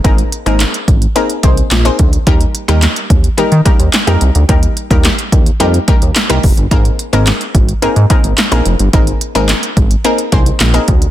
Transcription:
<<
  \new Staff \with { instrumentName = "Synth pluck" } { \time 4/4 \key aes \lydian \tempo 4 = 108 <bes c' ees' aes' bes'>16 r8 <bes c' ees' aes' bes'>8 r8. <bes c' ees' aes' bes'>16 r16 <bes c' ees' aes' c''>16 r8 <bes c' ees' aes' c''>16 r8 | <g bes ees' g' bes'>16 r8 <g bes ees' g' bes'>8 r8. <g bes ees' g' bes'>16 r16 <g bes ees' g' bes'>16 r8 <g bes ees' g' bes'>16 r8 | <g bes ees' g' bes'>16 r8 <g bes ees' g' bes'>8 r8. <g bes ees' g' bes'>16 r16 <g bes ees' g' bes'>16 r8 <g bes ees' g' bes'>16 r8 | <bes c' ees' aes' bes'>16 r8 <bes c' ees' aes' bes'>8 r8. <bes c' ees' aes' bes'>16 r16 <bes c' ees' aes' bes'>16 r8 <bes c' ees' aes' bes'>16 r8 |
<bes c' ees' aes' bes'>16 r8 <bes c' ees' aes' bes'>8 r8. <bes c' ees' aes' bes'>16 r16 <bes c' ees' aes' c''>16 r8 <bes c' ees' aes' bes'>16 r8 | }
  \new Staff \with { instrumentName = "Analog synth bass" } { \clef bass \time 4/4 \key aes \lydian aes,,8 r16 aes,,8 r16 aes,,8 r8 c,8 bes,,8 d,8 | ees,8 r16 ees,8 r16 ees,8 ees16 ees16 r16 ees,16 r16 f,16 c,16 d,16 | ees,8 r16 ees,8 r16 ees,8 f,8 ees,16 ees,16 r16 c,16 f,,16 g,,16 | aes,,8 r16 aes,,8 r16 aes,,8 aes,16 aes,16 r16 aes,,16 r16 bes,,16 f,,16 g,,16 |
aes,,8 r16 aes,,8 r16 aes,,8 r8 c,8 bes,,8 d,8 | }
  \new DrumStaff \with { instrumentName = "Drums" } \drummode { \time 4/4 <hh bd>16 hh16 hh16 hh16 <hc hh sn>16 hh16 <hh bd>16 hh16 hh16 hh16 <hh bd>16 hh16 <hc hh sn>16 hh16 <hh bd>16 hh16 | <hh bd>16 hh16 hh16 hh16 <hc hh sn>16 hh16 <hh bd>16 hh16 hh16 hh16 <hh bd>16 hh16 <hc hh sn>16 hh16 hh16 hh16 | <hh bd>16 hh16 hh16 <hh bd>16 <hc hh sn>16 hh16 <hh bd>16 hh16 hh16 hh16 <hh bd>16 hh16 <hc hh sn>16 hh16 <hho bd>16 hh16 | <hh bd>16 hh16 hh16 hh16 <hc hh sn>16 hh16 <hh bd>16 hh16 hh16 hh16 <hh bd>16 hh16 <hc hh sn>16 hh16 hh16 hh16 |
<hh bd>16 hh16 hh16 hh16 <hc hh sn>16 hh16 <hh bd>16 hh16 hh16 hh16 <hh bd>16 hh16 <hc hh sn>16 hh16 <hh bd>16 hh16 | }
>>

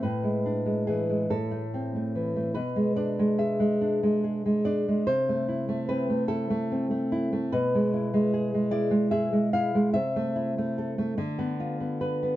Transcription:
\new Staff \with { instrumentName = "Nylon-string guitar" } { \time 6/8 \key a \minor \tempo 4. = 49 << { b'4 gis'8 a'4. | b'8 d''8 e''4. d''8 | c''4 b'8 a'4. | b'4. d''8 e''8 f''8 |
e''2. | } \\ { a,16 gis16 d'16 gis16 e16 gis16 a,16 a16 c'16 a16 e16 a16 | b,16 gis16 d'16 gis16 gis'16 gis16 d'16 gis16 gis'16 gis16 d'16 gis16 | c16 a16 e'16 a16 c'16 a16 e'16 a16 c'16 a16 e'16 a16 | b,16 gis16 e'16 gis16 gis'16 gis16 e'16 gis16 gis'16 gis16 e'16 gis16 |
c16 a16 e'16 a16 a'16 a16 d16 b16 f'16 b16 b'16 b16 | } >> }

